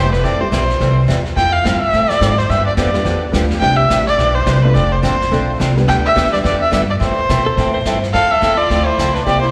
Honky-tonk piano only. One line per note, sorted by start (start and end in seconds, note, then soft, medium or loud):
0.40 0.50 G3 medium
0.40 0.51 A3 medium
0.40 0.50 C4 medium
0.40 0.51 E4 medium
0.40 0.51 G4 medium
1.36 1.52 F3 medium
1.36 1.51 A3 medium
1.36 1.52 C4 medium
1.36 1.52 E4 medium
1.36 1.52 F4 medium
1.64 1.79 F3 medium
1.64 1.80 A3 medium
1.64 1.80 C4 medium
1.64 1.80 E4 medium
1.64 1.80 F4 medium
2.94 3.04 G3 medium
2.94 3.04 B3 medium
2.94 3.04 D4 medium
2.94 3.04 F4 medium
2.94 3.04 G4 medium
3.32 3.60 G3 medium
3.32 3.61 B3 medium
3.32 3.60 D4 medium
3.32 3.62 F4 medium
3.32 3.61 G4 medium
3.62 4.04 G3 medium
3.62 4.04 C4 medium
3.62 4.04 D4 medium
3.62 4.04 E4 medium
3.62 4.04 G4 medium
4.63 4.74 A3 medium
4.63 4.74 C4 medium
4.63 4.74 D4 medium
4.63 4.74 F4 medium
4.63 4.74 A4 medium
5.32 5.73 A3 medium
5.32 5.73 C4 medium
5.32 5.73 D4 medium
5.32 5.74 F4 medium
5.32 5.74 A4 medium
5.77 5.87 G3 medium
5.77 5.87 B3 medium
5.77 5.87 D4 medium
5.77 5.87 G4 medium
5.77 5.87 B4 medium
6.33 6.43 G3 medium
6.33 6.43 B3 medium
6.33 6.43 D4 medium
6.33 6.43 G4 medium
6.33 6.43 B4 medium
7.29 7.71 A3 medium
7.29 7.71 C4 medium
7.29 7.71 E4 medium
7.29 7.71 A4 medium
7.29 7.71 C5 medium
8.14 8.29 C4 medium
8.14 8.29 E4 medium
8.14 8.29 F4 medium
8.14 8.29 A4 medium
8.14 8.29 C5 medium
9.26 9.42 C4 medium
9.26 9.42 E4 medium
9.26 9.42 G4 medium
9.26 9.42 A#4 medium
9.26 9.42 C5 medium